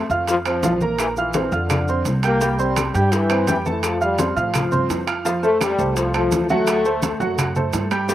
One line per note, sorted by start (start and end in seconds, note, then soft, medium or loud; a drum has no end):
0.10 0.59 F2 medium
0.10 0.40 F4 medium
0.10 0.40 F5 medium
0.10 0.40 F6 medium
0.10 high bongo soft
0.10 high conga soft
0.10 maracas soft
0.27 0.37 F3 loud
0.27 high bongo medium
0.27 high conga soft
0.27 high timbale medium
0.27 maracas medium
0.45 0.79 F3 medium
0.45 0.61 C4 medium
0.45 0.61 C5 medium
0.45 0.61 C6 medium
0.45 high bongo soft
0.45 high conga soft
0.45 high timbale medium
0.45 claves medium
0.45 maracas soft
0.63 1.46 A#1 medium
0.63 0.78 F3 medium
0.63 0.78 F4 medium
0.63 0.79 F5 medium
0.63 high bongo soft
0.63 low bongo medium
0.63 high conga loud
0.63 high timbale medium
0.63 low timbale medium
0.63 maracas medium
0.81 1.10 A#3 medium
0.81 1.11 A#4 medium
0.81 1.11 A#5 medium
0.81 high conga medium
0.81 maracas soft
0.98 1.08 E3 medium
0.98 high bongo medium
0.98 high conga soft
0.98 high timbale medium
0.98 claves medium
0.98 maracas medium
1.16 1.50 E3 medium
1.16 1.32 F4 medium
1.16 1.32 F5 medium
1.16 1.32 F6 medium
1.16 high bongo soft
1.16 high conga soft
1.16 maracas soft
1.33 1.49 C4 medium
1.33 1.50 C5 medium
1.33 1.50 C6 medium
1.33 high bongo medium
1.33 high conga medium
1.33 high timbale medium
1.33 maracas medium
1.52 2.02 F2 loud
1.52 2.06 D3 medium
1.52 1.82 F4 medium
1.52 1.82 F5 medium
1.52 1.82 F6 medium
1.52 high bongo soft
1.52 high conga soft
1.52 maracas soft
1.70 high bongo medium
1.70 high conga soft
1.70 low conga medium
1.70 high timbale medium
1.70 claves medium
1.70 maracas medium
1.88 2.18 C4 medium
1.88 2.18 C5 medium
1.88 2.18 C6 medium
1.88 high bongo soft
1.88 high conga soft
1.88 maracas soft
2.05 2.89 C2 medium
2.05 high bongo soft
2.05 low bongo medium
2.05 high conga soft
2.05 high timbale medium
2.05 maracas medium
2.23 2.57 A#3 loud
2.23 2.38 G4 medium
2.23 2.38 G5 medium
2.23 2.39 G6 medium
2.23 high timbale medium
2.23 claves medium
2.23 maracas soft
2.41 2.56 G3 medium
2.41 2.56 G4 medium
2.41 2.56 G5 medium
2.41 high bongo medium
2.41 high conga soft
2.41 maracas medium
2.59 2.92 G3 medium
2.59 2.88 C4 medium
2.59 2.88 C5 medium
2.59 2.88 C6 medium
2.59 high bongo soft
2.59 high conga soft
2.59 maracas soft
2.76 high bongo medium
2.76 high conga medium
2.76 high timbale loud
2.76 claves medium
2.76 maracas medium
2.94 3.44 G2 loud
2.94 3.12 G3 medium
2.94 3.23 G4 medium
2.94 3.24 G5 medium
2.94 3.24 G6 medium
2.94 high bongo soft
2.94 high conga soft
2.94 maracas soft
3.12 3.48 E3 loud
3.12 high bongo medium
3.12 high conga soft
3.12 high timbale medium
3.12 maracas medium
3.30 3.45 C4 medium
3.30 3.45 C5 medium
3.30 3.45 C6 medium
3.30 high bongo soft
3.30 high conga soft
3.30 high timbale medium
3.30 claves medium
3.30 maracas soft
3.47 4.30 F2 medium
3.47 3.57 E3 medium
3.47 3.62 G3 medium
3.47 3.62 G4 medium
3.47 3.62 G5 medium
3.47 high bongo soft
3.47 low bongo medium
3.47 high conga loud
3.47 high timbale medium
3.47 maracas medium
3.66 3.82 E3 medium
3.66 3.95 A3 medium
3.66 3.95 A4 medium
3.66 3.95 A5 medium
3.66 high conga medium
3.66 maracas soft
3.83 4.02 F3 medium
3.83 high bongo medium
3.83 high conga soft
3.83 high timbale medium
3.83 claves medium
3.83 maracas medium
4.01 4.34 G3 medium
4.01 4.15 F4 medium
4.01 4.16 F5 medium
4.01 4.16 F6 medium
4.01 high bongo soft
4.01 high conga soft
4.01 maracas soft
4.19 4.33 C4 medium
4.19 4.34 C5 medium
4.19 4.33 C6 medium
4.19 high bongo medium
4.19 high conga loud
4.19 high timbale medium
4.19 maracas medium
4.36 4.69 A2 loud
4.36 5.04 F3 medium
4.36 4.65 F4 medium
4.36 4.66 F5 medium
4.36 4.66 F6 medium
4.36 high bongo soft
4.36 high conga soft
4.36 maracas soft
4.54 high bongo medium
4.54 high conga soft
4.54 low conga medium
4.54 high timbale medium
4.54 claves medium
4.54 maracas medium
4.72 4.88 G2 medium
4.72 5.01 C4 medium
4.72 5.01 C5 medium
4.72 5.01 C6 medium
4.72 high bongo soft
4.72 high conga soft
4.72 low conga medium
4.72 maracas soft
4.90 5.73 F2 medium
4.90 high bongo soft
4.90 low bongo medium
4.90 high timbale medium
4.90 low timbale medium
4.90 maracas medium
5.07 5.22 F4 medium
5.07 5.22 F5 medium
5.07 5.22 F6 medium
5.07 high timbale medium
5.07 claves medium
5.07 maracas soft
5.25 5.40 F3 medium
5.25 5.40 F4 medium
5.25 5.40 F5 medium
5.25 high bongo medium
5.25 high conga soft
5.25 maracas medium
5.42 5.72 A3 medium
5.42 5.60 A3 medium
5.42 5.72 A4 medium
5.42 5.72 C5 medium
5.42 high bongo soft
5.42 high conga soft
5.42 maracas soft
5.61 5.94 G3 loud
5.61 high bongo medium
5.61 high conga medium
5.61 high timbale loud
5.61 claves medium
5.61 maracas medium
5.79 6.28 C2 loud
5.79 6.08 A3 medium
5.79 6.08 A4 medium
5.79 6.08 C5 medium
5.79 high bongo soft
5.79 high conga soft
5.79 maracas soft
5.96 6.14 F3 medium
5.96 high bongo medium
5.96 high conga soft
5.96 high timbale medium
5.96 maracas medium
6.14 6.48 F3 medium
6.14 6.43 A3 medium
6.14 6.44 A4 medium
6.14 6.44 C5 medium
6.14 high bongo soft
6.14 high conga soft
6.14 high timbale medium
6.14 claves medium
6.14 maracas soft
6.31 7.14 D2 medium
6.31 high bongo soft
6.31 low bongo medium
6.31 high conga medium
6.31 high timbale medium
6.31 low timbale medium
6.31 maracas medium
6.49 6.79 F#3 medium
6.49 7.53 A3 loud
6.49 6.79 F#4 medium
6.49 6.79 F#5 medium
6.49 high conga medium
6.49 maracas soft
6.67 high bongo medium
6.67 high conga soft
6.67 high timbale medium
6.67 claves medium
6.67 maracas medium
6.85 7.14 A3 medium
6.85 7.14 A4 medium
6.85 7.15 C5 medium
6.85 high bongo soft
6.85 high conga soft
6.85 maracas soft
7.02 high bongo medium
7.02 high conga medium
7.02 high timbale medium
7.02 maracas medium
7.20 7.70 F#2 loud
7.20 7.49 F#3 medium
7.20 7.49 F#4 medium
7.20 7.49 F#5 medium
7.20 high bongo soft
7.20 high conga soft
7.20 maracas soft
7.38 high bongo medium
7.38 high conga soft
7.38 low conga medium
7.38 high timbale medium
7.38 claves medium
7.38 maracas medium
7.56 7.85 A3 medium
7.56 7.85 A4 medium
7.56 7.85 C5 medium
7.56 high bongo soft
7.56 high conga soft
7.56 low conga medium
7.56 maracas soft
7.73 8.14 G2 medium
7.73 high bongo soft
7.73 low bongo medium
7.73 high conga soft
7.73 high timbale medium
7.73 low timbale medium
7.73 maracas medium
7.91 8.06 G3 medium
7.91 8.06 G4 medium
7.91 8.07 G5 medium
7.91 high timbale medium
7.91 claves medium
7.91 maracas soft
8.09 8.14 G3 medium
8.09 8.14 G4 medium
8.09 8.14 G5 medium
8.09 high bongo medium
8.09 high conga soft
8.09 maracas medium